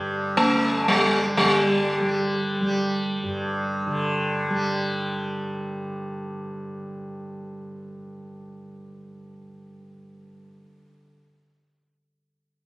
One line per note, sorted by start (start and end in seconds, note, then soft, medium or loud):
0.00 3.23 G2 medium
0.00 0.45 D3 medium
0.00 1.07 G3 medium
0.37 0.88 A3 medium
0.45 1.39 D3 medium
0.88 1.26 G3 medium
1.07 2.00 G3 medium
1.37 3.86 D3 medium
1.37 5.07 G3 medium
2.00 2.61 G3 medium
2.61 4.49 G3 medium
3.24 10.39 G2 medium
3.86 11.01 D3 medium
4.50 11.04 G3 medium